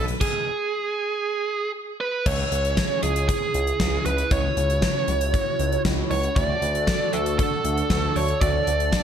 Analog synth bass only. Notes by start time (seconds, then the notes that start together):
Already playing: B1
2.26 C#2
2.52 C#2
3.03 C#2
3.54 C#2
3.80 C#2
4.06 C#2
4.31 C#2
4.57 C#2
5.08 C#2
5.59 C#2
5.85 C#2
6.11 C#2
6.36 D2
6.62 D2
7.13 D2
7.65 D2
7.90 D2
8.16 D2
8.41 D2
8.67 D2